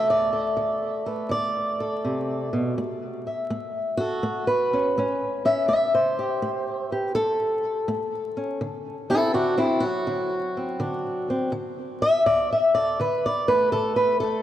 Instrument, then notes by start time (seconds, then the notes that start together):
steel-string acoustic guitar
Already playing: D3 A3 A4
0.10 D5
0.33 A4
0.57 D3
1.06 A3 B4
1.29 D3 D5
1.80 A4
2.05 C3
2.53 B2
2.78 A3
3.27 E5
3.50 A3
3.97 F#4 A4
4.23 A3
4.47 B4
4.73 C#4
4.98 A3 C#4
5.45 C#4 E5
5.68 A3 E5
5.94 C5
6.19 G4
6.42 A3
6.91 G4 B4
7.15 A3 A4
7.88 A3
8.37 C#4
8.61 D3
9.10 C4 E4 A4
9.34 D3 D4 F#4
9.58 C4 E4
9.80 F#3 F#4
10.07 D3
10.57 C4
10.80 D3 D4
11.30 C4
11.52 D3
12.02 E5
12.26 D3 D5
12.52 E5
12.75 A4 D5
13.00 D3 B4
13.26 D5
13.48 A3 B4
13.72 D3 A4
13.96 B4
14.20 A3 A4